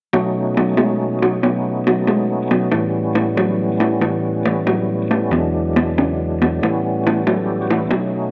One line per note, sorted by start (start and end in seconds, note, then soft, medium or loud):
0.13 2.73 B2 medium
0.13 0.53 B2 medium
0.13 2.73 F#3 medium
0.13 0.54 F#3 medium
0.13 1.41 A3 soft
0.13 2.73 C#4 soft
0.13 1.44 D#4 medium
0.57 0.76 B2 medium
0.57 0.76 F#3 medium
0.77 1.18 B2 medium
0.77 1.18 G#3 medium
1.23 1.41 B2 medium
1.23 1.41 F#3 medium
1.42 1.83 B2 medium
1.42 1.83 F#3 medium
1.42 2.72 A3 soft
1.42 2.73 B3 soft
1.42 2.74 D#4 soft
1.87 2.06 B2 medium
1.87 2.06 F#3 medium
2.07 2.48 B2 medium
2.07 2.48 G#3 medium
2.51 2.70 B2 medium
2.51 2.71 F#3 medium
2.72 3.12 A2 medium
2.72 5.32 A2 soft
2.72 3.12 E3 medium
2.72 5.30 E3 soft
2.72 5.33 G3 soft
2.72 5.33 B3 soft
2.72 5.33 C#4 medium
3.15 3.35 A2 medium
3.15 3.35 E3 medium
3.37 3.77 A2 medium
3.37 3.77 F#3 medium
3.80 4.00 A2 medium
3.80 4.00 E3 medium
4.02 4.42 A2 medium
4.02 4.42 E3 medium
4.46 4.65 A2 medium
4.46 4.65 E3 medium
4.67 5.07 A2 medium
4.67 5.07 F#3 medium
5.11 5.30 A2 medium
5.11 5.30 E3 medium
5.30 6.61 E2 medium
5.30 5.72 E2 medium
5.30 5.72 B2 medium
5.30 6.61 E3 medium
5.30 6.62 F#3 soft
5.30 6.63 G#3 soft
5.35 6.64 D4 medium
5.76 5.95 E2 medium
5.76 5.95 B2 medium
5.98 6.37 E2 medium
5.98 6.37 C#3 medium
6.42 6.60 E2 medium
6.42 6.61 B2 medium
6.61 7.91 A2 soft
6.61 7.02 A2 medium
6.61 7.92 E3 soft
6.61 7.02 E3 medium
6.61 7.92 G3 soft
6.61 7.92 B3 soft
6.61 7.92 C#4 medium
7.07 7.25 A2 medium
7.07 7.25 E3 medium
7.27 7.67 A2 medium
7.27 7.67 F#3 medium
7.27 7.58 A4 soft
7.44 7.72 G4 soft
7.60 7.80 F#4 soft
7.71 7.90 A2 medium
7.71 7.90 E3 medium
7.77 7.99 E4 soft
7.87 8.31 B2 medium
7.87 8.31 F#3 medium
7.91 8.31 F#3 medium
7.91 8.31 A3 medium
7.96 8.31 C#4 medium
7.96 8.31 D#4 medium